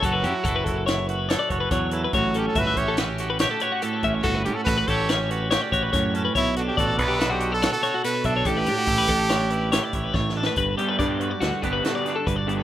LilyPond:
<<
  \new Staff \with { instrumentName = "Clean electric guitar" } { \time 5/4 \key a \mixolydian \tempo 4 = 142 a'16 b'16 g'16 fis'16 a'16 b'16 a'8 cis''8 b'8 cis''16 d''16 cis''16 b'16 cis''8 a'16 b'16 | cis''8 a'8 e''16 e''8 a'16 b'16 g'8 b'16 cis''16 a'16 cis''16 fis'16 a'8 e''16 cis''16 | a'16 b'16 g'16 fis'16 a'16 b'16 a'8 cis''8 b'8 cis''16 d''16 cis''16 b'16 cis''8 a'16 b'16 | cis''8 a'8 d''16 d''8 g'16 a'16 fis'8 a'16 cis''16 a'16 cis''16 fis'16 a'8 e''16 cis''16 |
a'16 b'16 g'16 fis'16 a'16 b'16 a'8 cis''8 b'8 cis''16 d''16 cis''16 b'16 cis''8 a'16 b'16 | b'8 g'16 b'16 d''8 b'16 d''16 fis'8 g'16 b'16 a'16 d''8 a'16 b'16 d''8 b'16 | }
  \new Staff \with { instrumentName = "Trumpet" } { \time 5/4 \key a \mixolydian fis'2 r2. | fis'8 g'16 a'16 b'8 cis''8 r2. | fis'8 g'16 a'16 b'8 cis''8 r2. | e'8 fis'16 g'16 a'8 b'8. g'8 a'8 a'8. b'8 a'8 |
g'1 r4 | r1 r4 | }
  \new Staff \with { instrumentName = "Clean electric guitar" } { \time 5/4 \key a \mixolydian << { r8 e'8 e'8 e'8 e'8 fis'8 a'8 fis'4 e'8 | r8 cis'8 fis'8 g'8 cis'8 fis'8 g'8 fis'4 cis'8 | r8 cis'8 fis'8 g'8 cis'8 fis'8 g'8 fis'4 cis'8 | r8 d'8 fis'8 a'8 d'8 fis'8 fis'8 fis'4 d'8 |
r8 d'8 e'8 d'16 e'16 d'8 e'8 e'8 e'4 d'8 | r4 d'8 fis'4 b'8 fis'8 d'4. | } \\ { fis1 fis4 | a,1 a,4 | a,1 a,4 | b,1 b,4 |
a,1 a,4 | g,8 g4. d2 g,8 g8 | } >> }
  \new Staff \with { instrumentName = "Overdriven electric guitar" } { \time 5/4 \key a \mixolydian r1 r4 | r1 r4 | r1 r4 | r1 r4 |
r1 r4 | r8 <d g b d'>8 <d g b d'>8 r4 <d g b d'>8 <d g b d'>8 r4 <d g b d'>8 | }
  \new Staff \with { instrumentName = "Picked electric bass" } { \clef bass \time 5/4 \key a \mixolydian fis,,8 fis,16 r16 fis,,8 fis,,2 fis,,8 e,4 | a,,4 g,,8 a,,2 r4 a,,8 | g,,8 a,16 r16 a,,8 a,,2 a,,8 fis,4 | b,,4 a,,8 b,,2 r4 b,,8 |
a,,8 a,16 r16 a,,8 a,,2 a,,8 a,,4 | g,,8 r8 g,4 d,16 r16 g,,8 r4 g,,4 | }
  \new DrumStaff \with { instrumentName = "Drums" } \drummode { \time 5/4 <hh bd>8 hh8 <hh bd>8 <hh bd>8 <hh sn>8 hh8 <hh sn>8 <hh bd>8 <hh bd sn>8 hh8 | <hh bd>8 hh8 <hh bd>8 <hh bd>8 <hh sn>8 <hh sn>8 <hh sn>8 hh8 hh8 <hh bd>8 | <hh bd>8 hh8 <hh bd>8 <hh bd sn>8 <hh sn>8 hh8 <hh sn>8 <hh bd>8 <hh bd sn>8 hh8 | <hh bd>8 hh8 <hh bd>8 <hh bd>8 <hh sn>8 hh8 <hh sn>8 <hh sn>8 hh8 <hh bd>8 |
<hh bd>8 hh8 <hh bd>8 <hh bd sn>8 <hh sn>8 hh8 <hh sn>8 <hh bd>8 \tuplet 3/2 { <bd sn>8 sn8 sn8 } | <hh bd>8 hh8 <hh bd sn>8 hh8 <hh sn>8 <hh bd>8 <hh sn>8 <hh sn>8 <hh bd>8 hh8 | }
>>